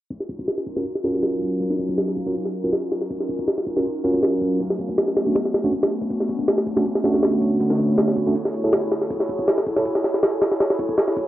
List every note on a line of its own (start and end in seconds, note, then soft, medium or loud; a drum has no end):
0.10 0.64 C#4 medium
0.10 0.65 D#4 medium
0.10 0.64 F4 medium
0.10 0.64 F#4 medium
0.10 0.64 A#4 medium
0.10 kick loud
0.10 ride medium
0.20 snare soft
0.29 kick medium
0.29 ride medium
0.39 kick medium
0.48 snare loud
0.48 ride medium
0.58 snare medium
0.67 1.02 C#4 medium
0.67 1.02 D#4 medium
0.67 1.02 F4 medium
0.67 1.02 F#4 medium
0.67 1.02 A#4 medium
0.67 kick medium
0.67 ride medium
0.76 0.84 C#4 medium
0.76 0.84 F4 medium
0.76 0.84 F#4 medium
0.76 0.84 A#4 medium
0.76 snare soft
0.85 ride medium
0.95 snare soft
1.04 1.58 F#3 medium
1.04 1.58 C#4 medium
1.04 2.24 C#4 medium
1.04 1.58 D#4 medium
1.04 2.24 F4 medium
1.04 2.24 F#4 medium
1.04 1.58 A#4 medium
1.04 2.24 A#4 loud
1.04 1.58 F5 medium
1.04 snare medium
1.04 open hi-hat medium
1.14 snare soft
1.23 snare loud
1.23 ride medium
1.42 kick medium
1.42 ride medium
1.60 2.15 F#3 medium
1.60 2.14 C#4 medium
1.60 2.15 D#4 medium
1.60 2.14 A#4 medium
1.60 2.14 F5 medium
1.60 kick loud
1.60 ride medium
1.70 snare medium
1.79 kick medium
1.79 ride medium
1.89 kick medium
1.98 snare loud
1.98 ride medium
2.08 snare soft
2.17 2.52 C#4 medium
2.17 2.52 D#4 medium
2.17 2.52 F4 medium
2.17 2.52 F#4 medium
2.17 2.52 A#4 medium
2.17 kick medium
2.17 ride medium
2.26 2.34 C#4 medium
2.26 2.34 F4 medium
2.26 2.34 F#4 medium
2.26 2.34 A#4 medium
2.35 ride medium
2.45 snare soft
2.54 3.08 C#4 medium
2.54 3.08 D#4 medium
2.54 3.08 F4 medium
2.54 3.08 F#4 medium
2.54 3.08 A#4 medium
2.54 ride medium
2.64 2.71 C#4 medium
2.64 2.71 F4 medium
2.64 2.71 F#4 medium
2.64 2.71 A#4 medium
2.73 snare loud
2.73 ride medium
2.83 ride soft
2.92 snare soft
2.92 ride medium
3.01 snare soft
3.10 3.64 C#4 medium
3.10 3.64 D#4 medium
3.10 3.64 F4 medium
3.10 3.64 F#4 medium
3.10 3.64 A#4 medium
3.10 kick loud
3.10 ride medium
3.20 snare soft
3.29 kick medium
3.29 ride medium
3.39 kick medium
3.48 snare loud
3.48 ride medium
3.58 snare medium
3.67 4.02 C#4 medium
3.67 4.02 D#4 medium
3.67 4.02 F4 medium
3.67 4.02 F#4 medium
3.67 4.02 A#4 medium
3.67 kick medium
3.67 ride medium
3.77 3.84 C#4 medium
3.77 3.84 F4 medium
3.77 3.84 F#4 medium
3.77 3.84 A#4 medium
3.77 snare soft
3.85 ride medium
4.04 4.58 F#3 medium
4.04 4.58 C#4 medium
4.04 4.59 C#4 medium
4.04 4.58 D#4 medium
4.04 4.59 F4 medium
4.04 4.59 F#4 medium
4.04 4.58 A#4 medium
4.04 4.59 A#4 medium
4.04 4.58 F5 medium
4.04 kick medium
4.04 ride medium
4.14 kick medium
4.23 snare loud
4.23 ride medium
4.42 kick medium
4.42 ride medium
4.60 5.14 A3 medium
4.60 5.14 B3 medium
4.60 5.14 C#4 medium
4.60 5.14 D4 medium
4.60 5.14 F#4 medium
4.60 kick loud
4.60 ride medium
4.70 snare soft
4.79 kick medium
4.79 ride medium
4.89 kick medium
4.98 snare loud
4.98 ride medium
5.08 snare soft
5.16 5.52 A3 medium
5.16 5.52 B3 medium
5.16 5.52 C#4 medium
5.16 5.52 D4 medium
5.16 5.52 F#4 medium
5.16 snare medium
5.16 ride medium
5.26 5.34 A3 medium
5.26 5.34 C#4 medium
5.26 5.34 D4 medium
5.26 5.34 F#4 medium
5.35 snare medium
5.35 ride medium
5.45 snare soft
5.54 snare medium
5.54 ride medium
5.64 5.71 A3 medium
5.64 5.71 C#4 medium
5.64 5.71 D4 medium
5.64 5.71 F#4 medium
5.73 5.80 A3 medium
5.73 5.80 B3 medium
5.73 5.80 C#4 medium
5.73 5.80 D4 medium
5.73 5.80 F#4 medium
5.73 kick medium
5.73 ride medium
5.83 6.08 A3 medium
5.83 6.08 B3 medium
5.83 6.08 C#4 medium
5.83 6.08 D4 medium
5.83 6.08 F#4 medium
5.83 snare loud
5.83 ride medium
6.01 kick medium
6.01 ride medium
6.10 6.64 A3 medium
6.10 6.64 B3 medium
6.10 6.64 C#4 medium
6.10 6.64 D4 medium
6.10 6.64 F#4 medium
6.10 kick loud
6.10 ride medium
6.20 snare soft
6.29 kick medium
6.29 ride medium
6.39 kick medium
6.48 snare loud
6.48 ride medium
6.58 snare medium
6.67 7.02 A3 medium
6.67 7.02 B3 medium
6.67 7.02 C#4 medium
6.67 7.02 D4 medium
6.67 7.02 F#4 medium
6.67 kick medium
6.67 ride medium
6.76 6.84 A3 medium
6.76 6.84 C#4 medium
6.76 6.84 D4 medium
6.76 6.84 F#4 medium
6.76 snare soft
6.85 ride medium
6.95 snare soft
7.04 7.58 D3 medium
7.04 7.58 A3 medium
7.04 8.24 A3 medium
7.04 7.58 B3 medium
7.04 8.24 C#4 medium
7.04 8.24 D4 medium
7.04 7.58 F#4 medium
7.04 8.24 F#4 loud
7.04 7.58 C#5 medium
7.04 snare medium
7.04 open hi-hat medium
7.14 snare soft
7.23 snare loud
7.23 ride medium
7.42 kick medium
7.42 ride medium
7.60 8.14 D3 medium
7.60 8.14 A3 medium
7.60 8.14 B3 medium
7.60 8.14 F#4 medium
7.60 8.14 C#5 medium
7.60 kick loud
7.60 ride medium
7.70 snare soft
7.79 kick medium
7.79 ride medium
7.89 kick medium
7.98 snare loud
7.98 ride medium
8.08 snare soft
8.16 8.52 E4 medium
8.16 8.52 F#4 medium
8.16 8.52 G#4 medium
8.16 8.52 A4 medium
8.16 8.52 C#5 medium
8.16 kick medium
8.16 ride medium
8.26 8.34 A3 medium
8.26 8.34 C#4 medium
8.26 8.34 D4 medium
8.26 8.34 F#4 medium
8.35 ride medium
8.45 snare soft
8.54 9.08 E4 medium
8.54 9.08 F#4 medium
8.54 9.08 G#4 medium
8.54 9.08 A4 medium
8.54 9.08 C#5 medium
8.54 ride medium
8.64 8.71 E4 medium
8.64 8.71 G#4 medium
8.64 8.71 A4 medium
8.64 8.71 C#5 medium
8.73 snare loud
8.73 ride medium
8.83 ride soft
8.92 snare soft
8.92 ride medium
9.01 snare soft
9.10 9.64 E4 medium
9.10 9.64 F#4 medium
9.10 9.64 G#4 medium
9.10 9.64 A4 medium
9.10 9.65 C#5 medium
9.10 kick loud
9.10 ride medium
9.20 snare soft
9.29 kick medium
9.29 ride medium
9.39 kick medium
9.48 snare loud
9.48 ride medium
9.58 snare medium
9.66 10.02 E4 medium
9.66 10.02 F#4 medium
9.66 10.02 G#4 medium
9.66 10.02 A4 medium
9.66 10.02 C#5 medium
9.66 kick medium
9.66 ride medium
9.76 9.84 E4 medium
9.76 9.84 G#4 medium
9.76 9.84 A4 medium
9.76 9.84 C#5 medium
9.76 snare soft
9.85 ride medium
9.95 snare soft
10.04 10.58 E4 medium
10.04 10.58 F#4 medium
10.04 10.58 G#4 medium
10.04 10.58 A4 medium
10.04 10.58 C#5 medium
10.04 snare soft
10.04 open hi-hat medium
10.14 snare soft
10.23 snare loud
10.23 ride medium
10.42 snare loud
10.42 ride medium
10.52 snare soft
10.60 11.15 E4 medium
10.60 11.15 F#4 medium
10.60 11.15 G#4 medium
10.60 11.14 A4 medium
10.60 11.14 C#5 medium
10.60 snare medium
10.60 ride medium
10.70 snare medium
10.79 kick medium
10.79 ride medium
10.89 kick medium
10.98 snare loud
10.98 ride medium
11.08 snare soft
11.16 11.27 E4 medium
11.16 11.27 F#4 medium
11.16 11.27 G#4 medium
11.16 11.27 A4 medium
11.16 11.27 C#5 medium
11.16 kick medium
11.16 ride medium